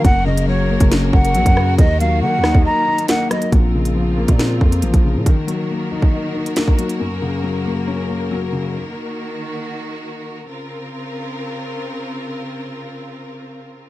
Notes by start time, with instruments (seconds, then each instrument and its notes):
Already playing: string section A#3 A#4
0.04 808-style bass F#1, grand piano F#2, string section C#3 F#4, flute F#5, kick, closed hi-hat
0.26 grand piano C#3, flute D#5
0.37 closed hi-hat
0.48 grand piano F#3, flute C#5
0.70 grand piano A#3
0.80 808-style bass F#1, kick, closed hi-hat
0.92 grand piano C#4, snare, closed hi-hat
1.13 808-style bass F#1, grand piano A#3, flute F#5, kick
1.25 closed hi-hat
1.35 808-style bass A#1, grand piano F#3, closed hi-hat
1.46 808-style bass F#2, kick, closed hi-hat
1.57 grand piano C#3, cross-stick
1.78 808-style bass D#2, string section D#3 A#3, grand piano D#3, flute D#5, kick, closed hi-hat
2.00 grand piano F#3, flute F5, closed hi-hat
2.22 808-style bass D#3, grand piano A#3, flute F#5
2.38 808-style bass D#2
2.44 grand piano D#4, cross-stick, snare
2.55 808-style bass D#2, kick
2.65 grand piano D#5, flute A#5
2.87 grand piano D#4
2.98 closed hi-hat
3.08 grand piano A#3, flute F#5, snare, closed hi-hat
3.31 grand piano F#3, flute D#5, cross-stick, closed hi-hat
3.42 closed hi-hat
3.52 808-style bass A#1, grand piano A#2, string section C#3 C4 F4 A#4, kick, closed hi-hat
3.75 grand piano C#3
3.85 closed hi-hat
3.96 grand piano F3
4.18 grand piano A#3
4.28 808-style bass A#2, kick, closed hi-hat
4.39 grand piano C4, snare, closed hi-hat
4.61 808-style bass F2, grand piano A#3, kick
4.72 closed hi-hat
4.82 808-style bass A1, grand piano F3, closed hi-hat
4.94 808-style bass A#1, kick, closed hi-hat
5.05 grand piano C#3
5.16 808-style bass A#2
5.26 grand piano D#3, string section D#3 A#3 F#4, kick, closed hi-hat
5.47 grand piano F#3, closed hi-hat
5.70 grand piano A#3
5.91 grand piano D#4
6.02 kick
6.14 grand piano D#5
6.35 grand piano D#4
6.46 closed hi-hat
6.56 grand piano A#3, snare, closed hi-hat
6.68 kick
6.79 grand piano F#3, closed hi-hat
6.89 closed hi-hat
7.00 grand piano F#2, string section C#3
7.21 grand piano C#3
7.44 grand piano F#3
7.66 grand piano A#3
7.87 grand piano C#4
8.09 grand piano A#3
8.31 grand piano F#3
8.52 grand piano C#3
8.74 string section D#3 F#4
10.48 string section C#3 C4 F4 A#4